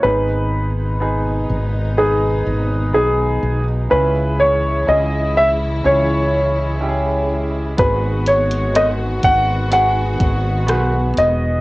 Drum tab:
HH |----------------|----------------|x-xxx-x-x-x-x-x-|
SD |----------------|----------------|----r-------r-r-|
BD |----------------|----------------|o-----o---o-----|